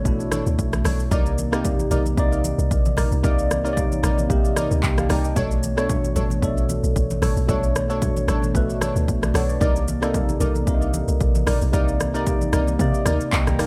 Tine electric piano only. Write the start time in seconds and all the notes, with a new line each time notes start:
Already playing: B2 A3 D4 C#5
0.04 B2 A3 D4 E4
1.10 C3 A#3 D#4 D5
1.52 C3 A#3 D#4 G4
2.16 C3 A#3 D#4 D5
3.22 C3 A#3 D#4 D5
3.64 C3 A#3 D#4 C#5
3.73 D5
4.29 C3 A#3 D#4 G4
4.83 D#5 G5
4.98 F5 A5
5.10 G5 A#5
5.24 D#5 G5
5.35 B2 A3 D4 C#5
5.76 B2 A3 D4 C#5
6.41 B2 A3 D4 A4
7.47 B2 A3 D4 C#5
7.88 B2 A3 D4 C#5
8.54 B2 A3 D4 B4
9.23 B4 D5
9.35 D5 F#5
9.49 B4 D5
9.60 C3 A#3 D#4 D5
10.01 C3 A#3 D#4 A4
10.66 C3 A#3 D4 A#4
10.74 D#4
11.72 C3 A#3 D#4 D5
12.13 C3 A#3 D#4 D5
12.78 C3 A#3 D#4 D5
13.33 D#5 G5 A#5
13.47 G5 A#5
13.59 F5 A5